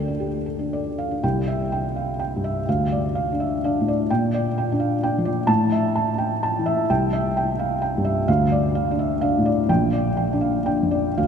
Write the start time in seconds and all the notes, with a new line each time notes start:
Already playing: D2 A4 D5
0.08 D4
0.20 G4
0.46 A4
0.59 D4
0.73 D5
0.98 F5
1.11 D4
1.23 C2 G5
1.48 E5
1.72 G5
1.96 F5
2.19 G5
2.36 G2
2.44 E5
2.68 D2 F5
2.92 D5
3.15 F5
3.32 D4
3.40 E5
3.64 D4 F5
3.81 A2
3.88 D5
4.10 A#2 G5
4.34 D5
4.58 G5
4.72 D4
4.80 F5
5.03 D4 G5
5.18 F3
5.25 D5
5.47 A2 A5
5.72 E5
5.96 A5
6.18 G5
6.43 A5
6.59 E3
6.66 E5
6.90 C2 G5
7.13 E5
7.37 G5
7.59 F5
7.82 G5
7.98 G2
8.05 E5
8.28 D2 F5
8.52 D5
8.75 F5
8.91 D4
8.99 E5
9.21 D4 F5
9.38 A2
9.46 D5
9.69 A#1 G5
9.93 D5
10.17 G5
10.33 D4
10.41 F5
10.66 D4 G5
10.83 F2
10.91 D5
11.18 D2 F5